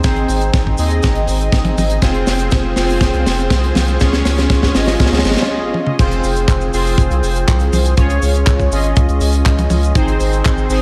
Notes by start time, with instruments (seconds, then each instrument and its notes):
0.04 analog synth bass G#1, analog polysynth C4 D#4 G#4 C5, kick, snare, closed hi-hat, cabasa
0.16 closed hi-hat
0.28 analog synth bass G#1, open hi-hat, cabasa
0.41 closed hi-hat, cabasa
0.54 analog synth bass G#1, kick, snare, closed hi-hat, cabasa
0.67 kick
0.78 analog synth bass D#2, analog polysynth C4 D#4 G#4 D#5, open hi-hat, cabasa
0.90 closed hi-hat, cabasa
1.03 analog synth bass G#1, kick, snare, closed hi-hat, cabasa
1.15 analog synth bass G#1, closed hi-hat
1.27 analog synth bass G#1, open hi-hat, cabasa
1.41 closed hi-hat, cabasa
1.52 analog synth bass G#1, kick, snare, closed hi-hat, cabasa
1.65 closed hi-hat, high tom
1.77 analog synth bass G#1, open hi-hat, high tom, cabasa
1.90 closed hi-hat, cabasa
2.02 analog synth bass F1, analog polysynth C4 F4 G#4 C5, kick, snare, closed hi-hat, cabasa
2.14 closed hi-hat
2.27 analog synth bass F1, snare, open hi-hat, cabasa
2.39 closed hi-hat, cabasa
2.51 analog synth bass F1, kick, snare, closed hi-hat, cabasa
2.76 analog synth bass F1, analog polysynth C4 F4 G#4 C5, snare, open hi-hat, cabasa
2.89 open hi-hat, cabasa
3.01 analog synth bass F1, kick, snare, closed hi-hat, cabasa
3.14 analog synth bass C2, closed hi-hat
3.26 analog synth bass F1, snare, open hi-hat, cabasa
3.39 closed hi-hat, cabasa
3.50 analog synth bass C2, kick, snare, closed hi-hat, cabasa
3.64 closed hi-hat
3.75 analog synth bass C2, snare, open hi-hat, high tom, cabasa
3.88 closed hi-hat, cabasa
4.00 analog synth bass C#2, analog polysynth C#4 F4 G#4 C#5, kick, snare, closed hi-hat, cabasa
4.13 snare, closed hi-hat
4.25 analog synth bass C#2, snare, open hi-hat, cabasa
4.38 snare, closed hi-hat, cabasa
4.50 analog synth bass C#2, kick, snare, closed hi-hat, cabasa
4.63 kick, snare
4.75 analog synth bass G#1, analog polysynth C#4 F4 G#4 D#5, snare, open hi-hat, cabasa
4.87 snare, open hi-hat, cabasa
5.00 analog synth bass C#2, kick, snare, closed hi-hat, cabasa
5.06 snare
5.12 analog synth bass C#2, snare, closed hi-hat
5.19 snare
5.25 analog synth bass G#1, snare, open hi-hat, cabasa
5.31 snare
5.37 snare, closed hi-hat, cabasa
5.42 snare
5.74 high tom
5.87 mid tom
5.99 analog synth bass F1, analog polysynth C4 F4 G#4 C5, kick, closed hi-hat, crash, cabasa
6.11 closed hi-hat, cabasa
6.24 analog synth bass F1, open hi-hat, cabasa
6.36 closed hi-hat, cabasa
6.48 analog synth bass F1, kick, clap, closed hi-hat, cabasa
6.61 cabasa
6.73 analog synth bass F1, analog polysynth C4 F4 G#4 C5, open hi-hat, cabasa
6.86 open hi-hat, cabasa
6.98 analog synth bass F1, kick, closed hi-hat, cabasa
7.10 analog synth bass C2, closed hi-hat, cabasa
7.23 analog synth bass F1, open hi-hat, cabasa
7.35 closed hi-hat, cabasa
7.48 analog synth bass C2, kick, clap, closed hi-hat, cabasa
7.59 closed hi-hat, cabasa
7.73 analog synth bass C2, open hi-hat, high tom, cabasa
7.85 closed hi-hat, cabasa
7.97 analog synth bass C#2, analog polysynth C#4 F4 G#4 C#5, kick, closed hi-hat, cabasa
8.10 closed hi-hat, cabasa
8.22 analog synth bass C#2, open hi-hat, cabasa
8.34 closed hi-hat, cabasa
8.47 analog synth bass C#2, kick, clap, closed hi-hat, cabasa
8.60 kick, cabasa
8.72 analog synth bass G#1, analog polysynth C#4 F4 G#4 D#5, open hi-hat, cabasa
8.84 closed hi-hat, cabasa
8.96 analog synth bass C#2, kick, closed hi-hat, cabasa
9.09 analog synth bass C#2, closed hi-hat, cabasa
9.21 analog synth bass C#2, open hi-hat, cabasa
9.32 closed hi-hat, cabasa
9.46 analog synth bass C#2, kick, clap, closed hi-hat, cabasa
9.59 closed hi-hat, high tom, cabasa
9.70 analog synth bass C#2, open hi-hat, high tom, cabasa
9.83 closed hi-hat, cabasa
9.95 analog synth bass G#1, analog polysynth C4 D#4 G#4 C5, kick, closed hi-hat, cabasa
10.08 closed hi-hat, cabasa
10.20 analog synth bass G#1, open hi-hat, cabasa
10.33 closed hi-hat, cabasa
10.45 analog synth bass G#1, kick, clap, closed hi-hat, cabasa
10.58 cabasa
10.70 analog synth bass G#1, analog polysynth C4 D#4 G#4 C5, open hi-hat, cabasa